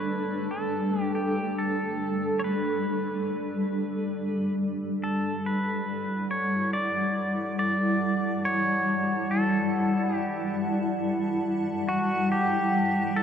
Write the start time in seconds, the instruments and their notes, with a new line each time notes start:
Already playing: ambient pad G3 D4 A4, pedal steel guitar B4
0.51 pedal steel guitar A4
1.02 pedal steel guitar G4
1.15 pedal steel guitar G4
1.59 pedal steel guitar A4
2.39 pedal steel guitar C#5
2.44 pedal steel guitar B4
5.04 pedal steel guitar A4
5.29 ambient pad F#5
5.44 ambient pad E4, pedal steel guitar B4
6.31 pedal steel guitar C#5
6.73 pedal steel guitar D5
6.79 ambient pad A5
7.59 pedal steel guitar D5
8.45 pedal steel guitar C#5
9.31 pedal steel guitar A4
10.16 pedal steel guitar G4
11.89 pedal steel guitar F#4
12.32 pedal steel guitar G4
13.16 pedal steel guitar A4